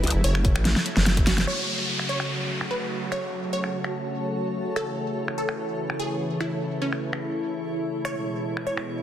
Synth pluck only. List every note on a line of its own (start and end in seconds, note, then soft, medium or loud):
0.00 0.13 B4 medium
0.24 1.40 C#5 loud
1.47 2.01 C#5 loud
2.09 2.63 C#5 medium
2.71 3.01 B4 medium
3.12 3.42 C#5 medium
3.53 4.68 C#5 medium
4.76 5.30 A4 loud
5.38 5.92 A4 medium
5.99 6.30 G#4 medium
6.40 6.71 E4 medium
6.82 7.97 C#4 medium
8.05 8.59 C#5 loud
8.67 9.03 C#5 medium